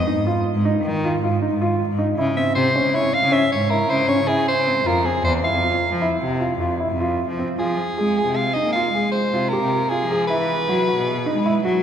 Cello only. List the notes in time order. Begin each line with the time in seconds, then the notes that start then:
0.16 G#2
0.55 G#2
0.84 D#3
1.22 G#2
1.51 G#2
1.89 G#2
2.18 C#3
2.56 C3
2.85 C#3
3.23 C#3
3.51 G#2
3.90 C#3
4.18 C#3
4.57 C#3
4.85 F2
5.24 E2
5.53 F2
5.91 F3
6.21 C3
6.60 F2
6.90 F2
7.30 F3
7.59 F3
7.98 G#3
8.27 C3
8.65 A#3
8.94 G#3
9.33 C3
9.62 C3
10.00 F3
10.30 E3
10.68 F#3
10.97 B2
11.36 G#3
11.64 F#3